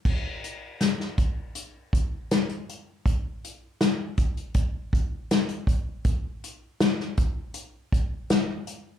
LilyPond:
\new DrumStaff \with { instrumentName = "Drums" } \drummode { \time 4/4 \tempo 4 = 80 <cymc bd>8 hh8 <hh sn>16 sn16 <hh bd>8 hh8 <hh bd>8 <hh sn>16 hh16 hh8 | <hh bd>8 hh8 <hh sn>8 <hh bd>16 hh16 <hh bd>8 <hh bd>8 <hh sn>16 hh16 <hh bd>8 | <hh bd>8 hh8 <hh sn>16 sn16 <hh bd>8 hh8 <hh bd>8 <hh sn>8 hh8 | }